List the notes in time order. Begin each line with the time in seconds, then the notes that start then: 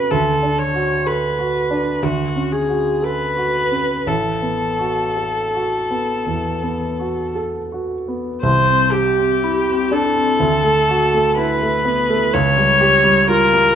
Already playing: C#3 C#4 F#4 A4 B4
0.11 D2 A4
0.43 D4
0.58 C#5
0.74 F#4
1.06 A4 B4
1.39 F#4
1.71 D4
2.03 D2 F#4
2.36 C#4
2.53 G#4
2.68 F#4
3.02 A4 B4
3.37 F#4
3.71 C#4
4.06 A1 A4
4.42 B3
4.79 F#4
5.17 A4
5.55 F#4
5.91 B3
6.26 E2
6.63 B3
6.99 F#4
7.35 A4
7.72 F#4
8.08 B3
8.42 C2 C5
8.68 C4
8.92 G4
9.18 C4
9.44 E4
9.69 C4
9.91 D4 A4
10.15 C4
10.40 D2
10.64 A3
10.89 F#4
11.14 A3
11.37 E4 B4
11.62 A3
11.85 B3
12.10 A3
12.34 C#2 C#5
12.57 G3
12.81 G4
13.04 G3
13.29 F4 A#4
13.53 G3